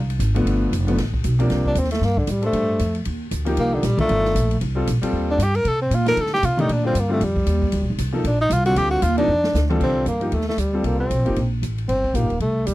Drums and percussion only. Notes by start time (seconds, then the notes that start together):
0.10 ride
0.20 hi-hat pedal, ride
0.36 ride
0.47 ride
0.73 hi-hat pedal, ride
0.88 ride
0.98 snare, ride
1.14 kick
1.24 hi-hat pedal, ride
1.40 ride
1.50 snare, ride
1.65 kick
1.75 hi-hat pedal, ride
1.84 snare
1.91 snare, ride
2.02 snare
2.17 kick
2.27 hi-hat pedal, ride
2.42 ride
2.53 ride
2.79 hi-hat pedal, ride
2.95 ride
3.05 ride
3.31 hi-hat pedal, ride
3.46 ride
3.57 ride
3.83 snare, hi-hat pedal, ride
3.98 kick, ride
4.09 ride
4.25 snare
4.36 hi-hat pedal, ride
4.51 ride
4.61 ride
4.87 hi-hat pedal, ride
5.03 ride
5.39 hi-hat pedal, ride
5.55 ride
5.65 ride
5.91 hi-hat pedal, ride
6.06 snare, ride
6.17 ride
6.26 snare
6.34 snare
6.43 hi-hat pedal, ride
6.59 ride
6.69 ride
6.95 hi-hat pedal, ride
7.21 ride
7.36 kick
7.46 hi-hat pedal, ride
7.62 kick
7.72 ride
7.98 hi-hat pedal, ride
8.24 ride
8.50 hi-hat pedal, ride
8.66 ride
8.76 ride
9.02 hi-hat pedal, ride
9.18 ride
9.44 snare
9.55 snare, hi-hat pedal
9.70 mid tom
9.80 kick, crash
10.06 hi-hat pedal, ride
10.21 ride
10.32 ride
10.41 snare
10.50 snare
10.58 hi-hat pedal, ride
10.84 ride
11.11 hi-hat pedal, ride
11.26 ride
11.36 ride
11.63 hi-hat pedal, ride
11.78 ride
11.89 ride
12.04 kick
12.15 hi-hat pedal, ride
12.30 ride
12.40 ride
12.67 hi-hat pedal, ride